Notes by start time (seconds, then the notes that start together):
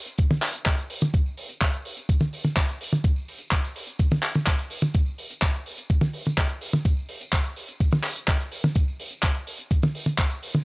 0.06 closed hi-hat, tambourine
0.18 kick, closed hi-hat, tambourine
0.30 closed hi-hat, high tom, tambourine
0.42 clap, open hi-hat
0.54 closed hi-hat, tambourine
0.66 kick, clap, closed hi-hat, tambourine
0.78 closed hi-hat, tambourine
0.90 open hi-hat
1.01 closed hi-hat, high tom, tambourine
1.13 kick, closed hi-hat, tambourine
1.26 tambourine
1.37 open hi-hat
1.49 closed hi-hat, tambourine
1.61 kick, clap, closed hi-hat, tambourine
1.73 closed hi-hat, tambourine
1.85 open hi-hat
1.97 closed hi-hat, tambourine
2.09 kick, closed hi-hat
2.20 closed hi-hat, high tom, tambourine
2.33 open hi-hat
2.45 closed hi-hat, high tom, tambourine
2.57 kick, clap, closed hi-hat, tambourine
2.68 closed hi-hat, tambourine
2.81 open hi-hat
2.92 closed hi-hat, high tom, tambourine
3.04 kick, closed hi-hat, tambourine
3.16 tambourine
3.28 open hi-hat
3.39 closed hi-hat, tambourine
3.51 kick, clap, closed hi-hat, tambourine
3.64 closed hi-hat, tambourine
3.76 open hi-hat
3.87 closed hi-hat, tambourine
3.99 kick, closed hi-hat, tambourine
4.10 closed hi-hat, high tom, tambourine
4.23 clap, open hi-hat
4.35 closed hi-hat, high tom, tambourine
4.46 kick, clap, closed hi-hat, tambourine
4.59 closed hi-hat, tambourine
4.70 open hi-hat
4.82 closed hi-hat, high tom, tambourine
4.94 kick, closed hi-hat, tambourine
5.06 tambourine
5.18 open hi-hat
5.30 closed hi-hat, tambourine
5.42 kick, clap, closed hi-hat, tambourine
5.54 closed hi-hat, tambourine
5.66 open hi-hat
5.77 closed hi-hat, tambourine
5.90 kick, closed hi-hat, tambourine
6.01 closed hi-hat, high tom, tambourine
6.13 open hi-hat
6.25 closed hi-hat, high tom, tambourine
6.37 kick, clap, closed hi-hat
6.49 closed hi-hat, tambourine
6.61 open hi-hat
6.73 closed hi-hat, high tom, tambourine
6.85 kick, closed hi-hat, tambourine
6.97 tambourine
7.09 open hi-hat
7.21 closed hi-hat, tambourine
7.32 kick, clap, closed hi-hat, tambourine
7.44 closed hi-hat, tambourine
7.56 open hi-hat
7.68 closed hi-hat, tambourine
7.80 kick, closed hi-hat, tambourine
7.91 closed hi-hat, high tom, tambourine
8.04 clap, open hi-hat
8.16 closed hi-hat, tambourine
8.28 kick, clap, closed hi-hat, tambourine
8.40 closed hi-hat, tambourine
8.52 open hi-hat
8.63 closed hi-hat, high tom, tambourine
8.75 kick, closed hi-hat, tambourine
8.88 tambourine
9.00 open hi-hat
9.11 closed hi-hat, tambourine
9.23 kick, clap, closed hi-hat
9.34 closed hi-hat, tambourine
9.47 open hi-hat
9.58 closed hi-hat, tambourine
9.71 kick, closed hi-hat, tambourine
9.82 closed hi-hat, high tom, tambourine
9.95 open hi-hat
10.06 closed hi-hat, high tom, tambourine
10.18 kick, clap, closed hi-hat, tambourine
10.30 closed hi-hat, tambourine
10.43 open hi-hat
10.54 closed hi-hat, high tom, tambourine